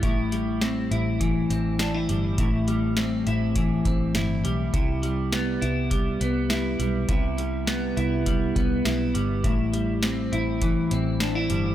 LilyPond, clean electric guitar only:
\new Staff \with { instrumentName = "Clean electric guitar" } { \time 4/4 \key a \minor \tempo 4 = 102 <a, e'>8 g8 c'8 e'8 e8 c'8 d'16 e'16 g8 | <a, e'>8 g8 c'8 e'8 e8 c'8 e'8 g8 | <c e'>8 g8 b8 e'8 g8 b8 e'8 g8 | <c e'>8 g8 b8 e'8 g8 b8 e'8 g8 |
<a, e'>8 g8 c'8 e'8 e8 c'8 d'16 e'16 g8 | }